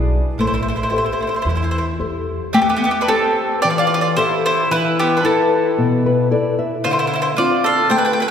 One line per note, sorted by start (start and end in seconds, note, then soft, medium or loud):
0.00 0.19 B1 loud
0.00 0.27 D4 soft
0.00 0.28 E4 soft
0.00 0.28 G#4 soft
0.00 0.34 G#4 medium
0.00 0.40 D5 medium
0.38 1.08 A1 medium
0.38 0.91 A3 medium
0.38 0.46 E4 medium
0.38 0.46 C5 medium
0.47 0.52 E4 soft
0.47 0.53 C5 medium
0.54 0.61 E4 soft
0.54 0.61 C5 soft
0.62 0.68 E4 soft
0.62 0.67 C5 medium
0.68 0.75 E4 soft
0.68 0.75 C5 soft
0.76 0.82 E4 soft
0.76 0.82 C5 soft
0.83 0.88 E4 soft
0.83 0.89 C5 medium
0.89 0.95 E4 soft
0.89 1.35 G4 soft
0.89 1.35 A4 soft
0.89 0.97 C5 soft
0.89 1.36 C5 medium
0.96 1.03 E4 soft
0.96 1.05 C5 medium
1.04 1.11 E4 soft
1.04 1.12 C5 soft
1.12 1.19 E4 soft
1.12 1.20 C5 soft
1.21 1.26 E4 soft
1.21 1.28 C5 soft
1.27 1.33 E4 soft
1.27 1.35 C5 soft
1.34 1.41 E4 soft
1.34 1.41 C5 soft
1.42 1.81 E2 medium
1.42 1.48 E4 soft
1.42 1.48 C5 medium
1.46 1.99 E3 medium
1.46 1.54 E4 soft
1.46 1.56 C5 soft
1.55 1.61 E4 soft
1.55 1.63 C5 soft
1.62 1.70 E4 soft
1.62 1.70 C5 soft
1.71 1.77 E4 soft
1.71 1.77 C5 medium
1.78 1.85 E4 soft
1.78 1.85 C5 soft
1.99 2.36 E2 medium
1.99 2.43 G4 soft
1.99 2.43 A4 soft
1.99 2.43 C5 soft
2.53 3.07 A3 medium
2.53 2.61 C4 medium
2.53 2.60 G4 medium
2.62 2.68 B3 soft
2.62 2.69 G4 medium
2.69 2.76 B3 medium
2.69 2.75 G4 medium
2.76 2.84 B3 medium
2.76 2.83 G4 medium
2.84 2.90 B3 medium
2.84 2.90 G4 medium
2.91 2.98 B3 soft
2.91 2.98 G4 medium
3.01 3.08 D4 medium
3.01 3.09 B4 medium
3.08 3.59 C4 medium
3.08 3.51 G4 medium
3.08 3.52 A4 soft
3.08 3.59 A4 loud
3.08 3.52 C5 medium
3.62 4.16 E3 medium
3.62 3.69 G4 medium
3.62 3.70 D5 loud
3.70 3.77 F4 medium
3.70 3.77 D5 medium
3.78 3.86 F4 medium
3.78 3.85 D5 medium
3.87 3.93 F4 medium
3.87 3.93 D5 medium
3.94 4.00 F4 medium
3.94 4.00 D5 medium
4.01 4.08 F4 medium
4.01 4.07 D5 medium
4.17 4.44 E4 medium
4.17 4.60 G4 medium
4.17 4.60 A4 soft
4.17 4.43 C5 loud
4.17 4.60 C5 medium
4.46 4.69 E4 medium
4.46 4.69 C5 loud
4.71 5.23 E3 medium
4.71 4.98 E4 medium
4.71 4.97 B4 loud
4.99 5.17 B3 medium
4.99 5.17 G4 medium
5.17 5.23 D4 medium
5.17 5.24 B4 medium
5.24 5.67 E4 medium
5.24 6.03 E4 medium
5.24 5.67 A4 medium
5.24 6.02 A4 medium
5.24 5.67 B4 soft
5.78 6.29 B2 medium
6.06 6.29 B4 medium
6.31 6.73 E4 medium
6.31 6.74 A4 medium
6.31 6.74 B4 medium
6.31 6.57 D5 medium
6.59 6.82 E5 medium
6.84 7.36 D3 medium
6.84 6.91 F4 medium
6.84 6.91 C5 medium
6.91 6.98 E4 medium
6.91 6.98 C5 medium
6.99 7.07 E4 medium
6.99 7.06 C5 medium
7.07 7.14 E4 medium
7.07 7.12 C5 medium
7.14 7.21 E4 medium
7.14 7.20 C5 medium
7.22 7.28 E4 medium
7.22 7.28 C5 medium
7.37 7.80 C4 soft
7.37 7.80 D4 soft
7.37 7.63 F4 medium
7.37 7.80 F4 medium
7.37 7.66 D5 loud
7.64 7.88 A4 loud
7.64 7.89 F5 medium
7.90 8.31 A3 medium
7.90 7.97 C5 medium
7.90 7.97 G5 loud
7.97 8.05 B4 medium
7.97 8.04 G5 medium
8.05 8.12 B4 medium
8.05 8.12 G5 medium
8.13 8.19 B4 medium
8.13 8.20 G5 medium
8.20 8.27 B4 medium
8.20 8.27 G5 medium